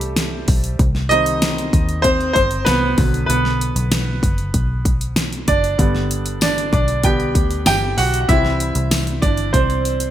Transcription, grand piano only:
Already playing: E3 G3 A3 C4 G4 A4 C5
1.09 D#3 G3 C4 D#4 D#5
2.02 C4 C5
2.33 C4 C5
2.65 B3 B4
2.98 D3 F#3 B3
3.26 B3 B4
5.48 D4 D5
5.78 D3 G3 B3
6.42 D4 D5
6.73 D4 D5
7.04 D3 G3 B3 G4 G5
7.67 G4 G5
7.98 F#4 F#5
8.21 F#5
8.28 E3 G3 C4 E4 E5
9.22 D4 D5
9.53 C4 C5

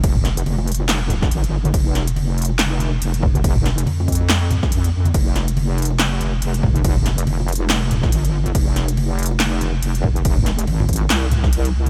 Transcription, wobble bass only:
Already playing: F1
0.46 F1
1.31 G1
1.74 F1
3.02 F1
3.87 F2
4.72 F2
5.14 F1
6.42 F1
7.27 F1
7.86 E1
8.12 G1
8.55 F1
9.82 F1
10.68 G#1
11.10 C2
11.74 C2

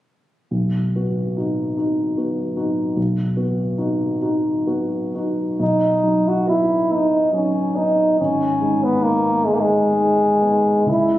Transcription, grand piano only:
0.51 B1
0.96 B3 F#4
1.37 D#4 F#4
1.77 D#4 F#4
2.17 B3 F#4
2.57 D#4 F#4
2.97 B1
3.37 B3 F#4
3.78 D#4 F#4
4.22 D#4 F#4
4.67 B3 F#4
5.15 D#4 F#4
5.59 B1
6.03 F#3 D#4
6.46 B3 D#4
6.90 B3 D#4
7.32 F#3 D#4
7.75 B3 D#4
8.20 G#1
8.61 G#3 D#4
9.01 B3 D#4
9.45 B3 D#4
9.92 G#3 D#4
10.41 B3 D#4
10.86 C#2

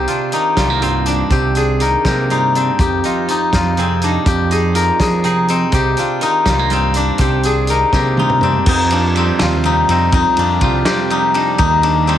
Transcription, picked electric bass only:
0.57 C2
1.30 C2
2.05 C3
2.79 F2
3.53 F2
4.26 F2
5.00 F3
5.73 C2
6.46 C2
7.19 C2
7.93 C3
8.66 F2
9.41 D#2
9.89 F2
10.12 F2
10.38 F2
10.62 C2
11.59 D#2

